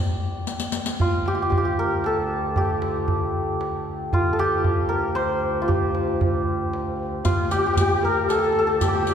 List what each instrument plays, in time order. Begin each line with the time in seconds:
Already playing: santur G4
0.47 riq, tombak tek
0.60 riq
0.72 riq, tombak ka
0.86 riq
1.00 double bass D2, santur F4, tombak dum
1.26 santur G4, tombak tek
1.35 santur G4
1.39 santur G4, tombak ka
1.50 santur G4, tombak dum
1.57 santur G4
1.65 santur G4
1.79 santur A#4
2.04 santur A4, tombak tek
2.56 santur G4, tombak dum
2.82 tombak tek
2.95 tombak ka
3.08 tombak dum
3.61 tombak tek
4.13 double bass D2, santur F4, tombak dum
4.33 santur A4
4.39 santur G4, tombak tek
4.52 tombak ka
4.64 tombak dum
4.89 santur A#4
5.15 santur C5, tombak tek
5.62 santur F4
5.68 santur G4, tombak dum
5.95 tombak tek
6.08 tombak ka
6.21 tombak dum
6.48 tombak ka
6.74 tombak tek
7.00 tombak ka
7.24 double bass D2, santur F4, ney F4 G4, riq, tombak dum
7.51 ney G4, santur G4, riq, tombak tek
7.58 santur G4
7.64 santur G4, tombak ka
7.73 santur G4, tombak dum
7.77 santur G4, riq
7.89 santur G4
8.03 santur A#4, ney A#4 B4
8.29 ney A4, santur A4, riq, tombak tek
8.39 santur A4
8.44 santur A4
8.52 santur A4
8.59 santur A4
8.67 santur A4
8.80 santur G4, ney G4 G#4, riq, tombak dum
8.88 santur G4
8.95 santur G4
9.02 santur G4
9.07 santur G4, riq, tombak tek